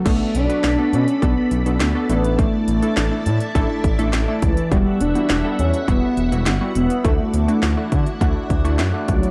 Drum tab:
CC |x---------------|----------------|----------------|----------------|
HH |x-xxx-xxx-xxx-xx|x-xxx-xxx-xxx-xx|x-xxx-xxx-xxx-xx|x-xxx-xxx-xxx-xx|
SD |----o-------o---|----o-------o---|----o-------o---|----o-------o---|
BD |o-------o-------|o-------o-o---o-|o-------o-------|o-----o-o-o---o-|